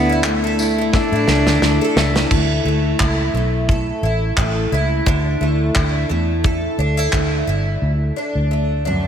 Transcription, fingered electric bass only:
0, 0, Header, 1, 2, 480
1, 0, Start_track
1, 0, Tempo, 688073
1, 1611, Time_signature, 4, 2, 24, 8
1, 6330, End_track
2, 0, Start_track
2, 0, Title_t, "Fingered electric bass"
2, 0, Program_c, 0, 33
2, 0, Note_on_c, 0, 38, 112
2, 623, Note_off_c, 0, 38, 0
2, 781, Note_on_c, 0, 45, 101
2, 870, Note_off_c, 0, 45, 0
2, 888, Note_on_c, 0, 37, 91
2, 997, Note_off_c, 0, 37, 0
2, 1020, Note_on_c, 0, 38, 87
2, 1110, Note_off_c, 0, 38, 0
2, 1127, Note_on_c, 0, 38, 85
2, 1237, Note_off_c, 0, 38, 0
2, 1368, Note_on_c, 0, 37, 88
2, 1565, Note_off_c, 0, 37, 0
2, 1611, Note_on_c, 0, 38, 103
2, 1808, Note_off_c, 0, 38, 0
2, 1846, Note_on_c, 0, 38, 82
2, 2045, Note_off_c, 0, 38, 0
2, 2094, Note_on_c, 0, 37, 72
2, 2289, Note_off_c, 0, 37, 0
2, 2327, Note_on_c, 0, 35, 75
2, 2722, Note_off_c, 0, 35, 0
2, 2808, Note_on_c, 0, 33, 80
2, 3005, Note_off_c, 0, 33, 0
2, 3051, Note_on_c, 0, 33, 88
2, 3247, Note_off_c, 0, 33, 0
2, 3292, Note_on_c, 0, 37, 91
2, 3488, Note_off_c, 0, 37, 0
2, 3533, Note_on_c, 0, 38, 110
2, 3729, Note_off_c, 0, 38, 0
2, 3772, Note_on_c, 0, 38, 90
2, 3968, Note_off_c, 0, 38, 0
2, 4015, Note_on_c, 0, 38, 80
2, 4210, Note_off_c, 0, 38, 0
2, 4254, Note_on_c, 0, 40, 76
2, 4647, Note_off_c, 0, 40, 0
2, 4731, Note_on_c, 0, 38, 76
2, 4928, Note_off_c, 0, 38, 0
2, 4974, Note_on_c, 0, 38, 78
2, 5170, Note_off_c, 0, 38, 0
2, 5211, Note_on_c, 0, 31, 67
2, 5409, Note_off_c, 0, 31, 0
2, 5454, Note_on_c, 0, 38, 99
2, 5651, Note_off_c, 0, 38, 0
2, 5826, Note_on_c, 0, 38, 85
2, 6330, Note_off_c, 0, 38, 0
2, 6330, End_track
0, 0, End_of_file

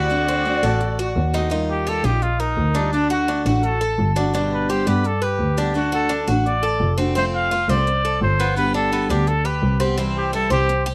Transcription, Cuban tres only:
0, 0, Header, 1, 2, 480
1, 0, Start_track
1, 0, Key_signature, 1, "major"
1, 0, Tempo, 352941
1, 140, Time_signature, 4, 2, 24, 8
1, 14885, End_track
2, 0, Start_track
2, 0, Title_t, "Cuban tres"
2, 0, Program_c, 0, 25
2, 0, Note_on_c, 0, 66, 74
2, 369, Note_off_c, 0, 66, 0
2, 386, Note_on_c, 0, 60, 77
2, 849, Note_off_c, 0, 60, 0
2, 857, Note_on_c, 0, 69, 68
2, 1324, Note_off_c, 0, 69, 0
2, 1347, Note_on_c, 0, 66, 76
2, 1809, Note_off_c, 0, 66, 0
2, 1823, Note_on_c, 0, 63, 77
2, 2041, Note_off_c, 0, 63, 0
2, 2057, Note_on_c, 0, 63, 70
2, 2524, Note_off_c, 0, 63, 0
2, 2539, Note_on_c, 0, 67, 68
2, 2772, Note_off_c, 0, 67, 0
2, 2774, Note_on_c, 0, 75, 64
2, 3242, Note_off_c, 0, 75, 0
2, 3260, Note_on_c, 0, 70, 75
2, 3725, Note_off_c, 0, 70, 0
2, 3736, Note_on_c, 0, 62, 73
2, 4203, Note_off_c, 0, 62, 0
2, 4217, Note_on_c, 0, 66, 70
2, 4451, Note_off_c, 0, 66, 0
2, 4464, Note_on_c, 0, 62, 74
2, 4695, Note_off_c, 0, 62, 0
2, 4704, Note_on_c, 0, 66, 64
2, 5167, Note_off_c, 0, 66, 0
2, 5181, Note_on_c, 0, 69, 76
2, 5646, Note_off_c, 0, 69, 0
2, 5660, Note_on_c, 0, 62, 85
2, 5893, Note_off_c, 0, 62, 0
2, 5911, Note_on_c, 0, 62, 78
2, 6371, Note_off_c, 0, 62, 0
2, 6386, Note_on_c, 0, 67, 74
2, 6616, Note_off_c, 0, 67, 0
2, 6622, Note_on_c, 0, 74, 69
2, 7087, Note_off_c, 0, 74, 0
2, 7095, Note_on_c, 0, 71, 71
2, 7563, Note_off_c, 0, 71, 0
2, 7586, Note_on_c, 0, 62, 81
2, 8049, Note_off_c, 0, 62, 0
2, 8054, Note_on_c, 0, 66, 73
2, 8287, Note_on_c, 0, 62, 77
2, 8290, Note_off_c, 0, 66, 0
2, 8526, Note_off_c, 0, 62, 0
2, 8534, Note_on_c, 0, 66, 74
2, 9003, Note_off_c, 0, 66, 0
2, 9014, Note_on_c, 0, 69, 71
2, 9483, Note_off_c, 0, 69, 0
2, 9487, Note_on_c, 0, 60, 80
2, 9711, Note_off_c, 0, 60, 0
2, 9727, Note_on_c, 0, 60, 68
2, 10199, Note_off_c, 0, 60, 0
2, 10218, Note_on_c, 0, 65, 68
2, 10452, Note_off_c, 0, 65, 0
2, 10463, Note_on_c, 0, 72, 71
2, 10928, Note_off_c, 0, 72, 0
2, 10944, Note_on_c, 0, 69, 69
2, 11408, Note_off_c, 0, 69, 0
2, 11420, Note_on_c, 0, 59, 80
2, 11885, Note_off_c, 0, 59, 0
2, 11891, Note_on_c, 0, 62, 71
2, 12128, Note_off_c, 0, 62, 0
2, 12140, Note_on_c, 0, 59, 77
2, 12373, Note_off_c, 0, 59, 0
2, 12379, Note_on_c, 0, 62, 70
2, 12845, Note_off_c, 0, 62, 0
2, 12851, Note_on_c, 0, 67, 70
2, 13320, Note_off_c, 0, 67, 0
2, 13326, Note_on_c, 0, 60, 83
2, 13550, Note_off_c, 0, 60, 0
2, 13567, Note_on_c, 0, 60, 77
2, 14039, Note_off_c, 0, 60, 0
2, 14049, Note_on_c, 0, 64, 67
2, 14279, Note_off_c, 0, 64, 0
2, 14284, Note_on_c, 0, 72, 69
2, 14757, Note_off_c, 0, 72, 0
2, 14770, Note_on_c, 0, 67, 79
2, 14885, Note_off_c, 0, 67, 0
2, 14885, End_track
0, 0, End_of_file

